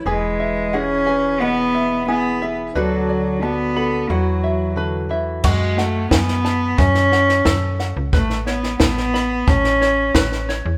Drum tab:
CC |----------------|----------------|x---------------|----------------|
SD |----------------|----------------|o-o-ooo-ooooo-o-|ooooooo-ooo-ooo-|
BD |----------------|----------------|o---o---o---o---|o---o---o---o---|